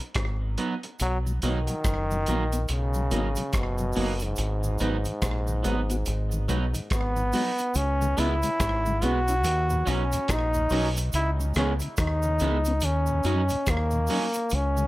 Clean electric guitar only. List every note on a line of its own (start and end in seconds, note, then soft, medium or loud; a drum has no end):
0.00 muted clean electric guitar stroke soft
0.58 0.73 F#3 medium
0.58 0.73 B3 medium
0.58 0.74 D#4 medium
0.84 muted clean electric guitar stroke soft
1.43 1.58 F#3 medium
1.43 1.58 A#3 medium
1.43 1.58 D#4 medium
2.28 2.43 F#3 medium
2.28 2.43 A#3 medium
2.28 2.43 D#4 medium
3.11 3.27 F#3 medium
3.11 3.27 A#3 medium
3.11 3.27 D#4 medium
3.37 muted clean electric guitar stroke soft
3.96 4.11 F#3 medium
3.96 4.12 A#3 medium
3.96 4.12 D#4 medium
4.21 muted clean electric guitar stroke soft
4.80 4.96 F#3 medium
4.80 4.96 B3 medium
4.80 4.96 D#4 medium
5.63 5.79 F#3 medium
5.63 5.80 B3 medium
5.63 5.80 D#4 medium
6.48 6.64 F#3 medium
6.48 6.65 B3 medium
6.48 6.65 D#4 loud
6.74 muted clean electric guitar stroke soft
7.33 7.49 F#3 medium
7.33 7.49 B3 medium
7.33 7.50 D#4 medium
7.59 muted clean electric guitar stroke soft
8.17 8.33 G#3 medium
8.17 8.33 B3 loud
8.17 8.33 E4 loud
9.02 9.18 G#3 medium
9.02 9.18 B3 medium
9.02 9.18 E4 medium
9.86 10.02 F#3 loud
9.86 10.02 C#4 loud
9.86 10.02 D#4 loud
10.12 muted clean electric guitar stroke soft
10.71 10.87 F#3 medium
10.71 10.87 C#4 loud
10.71 10.87 D#4 loud
10.97 muted clean electric guitar stroke soft
11.57 11.72 G#3 medium
11.57 11.72 B3 medium
11.57 11.72 E4 loud
12.41 12.56 G#3 medium
12.41 12.57 B3 medium
12.41 12.57 E4 medium
13.25 13.40 F#3 medium
13.25 13.41 C#4 medium
13.25 13.41 D#4 loud
13.50 muted clean electric guitar stroke soft
14.09 14.25 F#3 medium
14.09 14.25 C#4 medium
14.09 14.25 D#4 loud
14.36 muted clean electric guitar stroke soft